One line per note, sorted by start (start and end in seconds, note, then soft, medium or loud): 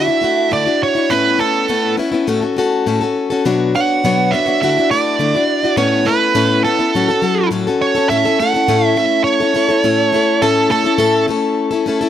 0.00 0.52 E5 medium
0.07 0.22 D4 soft
0.07 0.23 E4 soft
0.07 0.23 F#4 soft
0.21 0.50 A3 medium
0.21 0.51 D4 medium
0.21 0.51 E4 medium
0.21 0.51 F#4 medium
0.51 0.67 D3 medium
0.51 0.67 A3 medium
0.51 0.67 D4 medium
0.51 0.64 E4 medium
0.51 0.65 F#4 medium
0.51 0.83 D5 medium
0.65 0.96 D4 soft
0.65 0.94 E4 soft
0.65 0.95 F#4 soft
0.83 1.13 C#5 medium
0.95 1.10 D4 soft
0.95 1.10 E4 soft
0.95 1.10 F#4 soft
1.10 1.40 A2 medium
1.10 1.38 A3 medium
1.10 1.39 B3 medium
1.10 1.38 C#4 medium
1.10 1.40 E4 medium
1.10 1.38 B4 loud
1.39 1.68 A3 medium
1.39 1.68 B3 medium
1.39 1.68 C#4 medium
1.39 1.69 E4 medium
1.39 1.95 A4 medium
1.68 1.98 A2 medium
1.68 1.96 A3 medium
1.68 1.98 B3 medium
1.68 1.96 C#4 medium
1.68 1.98 E4 medium
1.97 2.13 A3 soft
1.97 2.12 B3 medium
1.97 2.13 C#4 medium
1.97 2.10 E4 medium
2.12 2.28 B3 medium
2.12 2.27 C#4 soft
2.12 2.27 E4 medium
2.27 2.42 A2 medium
2.27 2.43 A3 medium
2.27 2.42 C#4 medium
2.27 2.41 F#4 loud
2.27 2.40 A4 loud
2.41 2.57 C#4 soft
2.41 2.57 F#4 medium
2.41 2.57 A4 medium
2.56 2.86 A3 medium
2.56 2.86 C#4 medium
2.56 2.87 F#4 medium
2.56 2.87 A4 medium
2.86 3.01 A2 medium
2.86 3.01 A3 medium
2.86 3.02 C#4 medium
2.86 3.01 F#4 medium
2.86 3.00 A4 medium
3.01 3.31 C#4 soft
3.01 3.30 F#4 soft
3.01 3.29 A4 soft
3.30 3.46 C#4 soft
3.30 3.45 F#4 soft
3.30 3.45 A4 medium
3.45 3.74 B2 medium
3.45 3.74 F#3 medium
3.45 3.73 B3 medium
3.45 3.74 D4 medium
3.45 3.75 F#4 medium
3.45 3.75 C#5 medium
3.75 4.03 B3 medium
3.75 4.03 D4 medium
3.75 4.04 F#4 medium
3.75 4.04 C#5 medium
3.75 4.35 F#5 medium
4.04 4.33 B2 medium
4.04 4.33 F#3 medium
4.04 4.32 B3 medium
4.04 4.32 D4 medium
4.04 4.33 F#4 medium
4.04 4.34 C#5 medium
4.31 4.47 B3 medium
4.31 4.47 D4 medium
4.31 4.46 F#4 medium
4.31 4.45 C#5 medium
4.31 4.60 E5 medium
4.46 4.62 B3 soft
4.46 4.62 D4 soft
4.46 4.62 F#4 soft
4.46 4.61 C#5 soft
4.61 4.77 D3 medium
4.61 4.77 A3 medium
4.61 4.77 D4 medium
4.61 4.76 E4 medium
4.61 4.77 F#4 medium
4.61 4.91 E5 loud
4.77 4.91 D4 soft
4.77 4.91 E4 soft
4.77 4.91 F#4 medium
4.91 5.19 A3 medium
4.91 5.19 D4 medium
4.91 5.20 E4 medium
4.91 5.19 F#4 medium
4.91 5.77 D5 medium
5.19 5.34 D3 medium
5.19 5.34 A3 medium
5.19 5.35 D4 medium
5.19 5.33 E4 medium
5.19 5.34 F#4 medium
5.34 5.64 D4 soft
5.34 5.62 E4 soft
5.34 5.63 F#4 soft
5.63 5.77 D4 soft
5.63 5.77 E4 medium
5.63 5.77 F#4 soft
5.77 6.06 A2 medium
5.77 6.04 A3 medium
5.77 6.06 B3 medium
5.77 6.05 C#4 medium
5.77 6.07 E4 medium
5.77 6.08 C#5 loud
6.05 6.34 A3 medium
6.05 6.35 B3 medium
6.05 6.34 C#4 medium
6.05 6.35 E4 medium
6.05 6.64 B4 medium
6.35 6.64 A2 medium
6.35 6.63 A3 loud
6.35 6.65 B3 medium
6.35 6.64 C#4 medium
6.35 6.65 E4 loud
6.64 6.79 A3 medium
6.64 6.79 B3 medium
6.64 6.79 C#4 medium
6.64 6.78 E4 medium
6.64 7.48 A4 medium
6.79 6.94 B3 soft
6.79 6.95 C#4 soft
6.79 6.94 E4 medium
6.95 7.09 A2 medium
6.95 7.09 F#3 medium
6.95 7.09 C#4 medium
6.95 7.09 F#4 medium
6.95 7.07 A4 medium
7.08 7.21 C#4 soft
7.08 7.22 F#4 soft
7.08 7.23 A4 medium
7.22 7.50 F#3 medium
7.22 7.51 C#4 medium
7.22 7.51 F#4 medium
7.22 7.51 A4 medium
7.51 7.66 A2 medium
7.51 7.66 F#3 medium
7.51 7.66 C#4 medium
7.51 7.67 F#4 medium
7.51 7.66 A4 medium
7.67 7.97 C#4 soft
7.67 7.95 F#4 soft
7.67 7.94 A4 soft
7.82 8.08 C#5 medium
7.95 8.10 C#4 soft
7.95 8.11 F#4 medium
7.95 8.10 A4 medium
8.09 8.24 A2 medium
8.09 8.25 A3 medium
8.09 8.25 C#4 medium
8.09 8.25 E4 medium
8.09 8.24 A4 medium
8.09 8.37 E5 loud
8.25 8.39 C#4 soft
8.25 8.40 E4 soft
8.25 8.39 A4 medium
8.39 8.54 A3 medium
8.39 8.54 C#4 medium
8.39 8.54 E4 medium
8.39 8.53 A4 medium
8.39 8.85 F#5 loud
8.54 8.68 C#4 soft
8.54 8.68 E4 soft
8.54 8.68 A4 soft
8.68 8.97 A2 medium
8.68 8.95 A3 loud
8.68 8.96 C#4 medium
8.68 8.97 E4 medium
8.68 8.98 A4 medium
8.85 8.97 E5 loud
8.96 9.40 A3 medium
8.96 9.40 C#4 medium
8.96 9.40 E4 medium
8.96 9.39 A4 medium
8.96 9.23 E5 medium
9.24 10.44 C#5 medium
9.40 9.53 C#4 soft
9.40 9.54 E4 soft
9.40 9.55 A4 medium
9.54 9.69 A3 medium
9.54 9.69 C#4 medium
9.54 9.69 E4 medium
9.54 9.67 A4 medium
9.69 9.83 C#4 soft
9.69 9.84 E4 soft
9.69 9.83 A4 medium
9.84 10.13 A2 medium
9.84 10.11 A3 medium
9.84 10.13 C#4 medium
9.84 10.13 E4 medium
9.84 10.13 A4 medium
10.13 10.41 A3 medium
10.13 10.41 C#4 medium
10.13 10.42 E4 medium
10.13 10.42 A4 medium
10.42 10.71 A2 medium
10.42 10.69 A3 medium
10.42 10.70 C#4 medium
10.42 10.71 E4 medium
10.42 10.70 A4 medium
10.42 10.71 A4 medium
10.70 10.85 A3 medium
10.70 10.85 C#4 medium
10.70 10.85 E4 medium
10.70 11.25 A4 medium
10.70 10.83 A4 medium
10.84 10.98 C#4 soft
10.84 10.98 E4 soft
10.84 10.99 A4 medium
10.98 11.28 A2 medium
10.98 11.27 A3 medium
10.98 11.28 C#4 medium
10.98 11.28 E4 loud
10.98 11.29 A4 loud
11.28 11.72 A3 medium
11.28 11.72 C#4 medium
11.28 11.71 E4 medium
11.28 11.70 A4 medium
11.71 11.86 C#4 medium
11.71 11.87 E4 medium
11.71 11.86 A4 medium
11.86 12.01 A3 medium
11.86 12.01 C#4 medium
11.86 12.01 E4 medium
11.86 12.00 A4 medium
12.01 12.09 C#4 medium
12.01 12.09 E4 medium
12.01 12.09 A4 medium